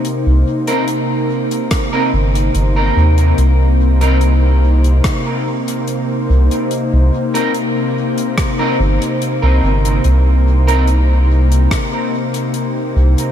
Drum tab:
HH |x--xx--xx--xx--x|x--xx--xx--xx--x|x--xx--xx--xx--x|x--xx--xx--xx--x|
SD |--------r-------|--------r-------|--------r-------|--------r-------|
BD |--------o-------|--------o-------|--------o-------|--------o-------|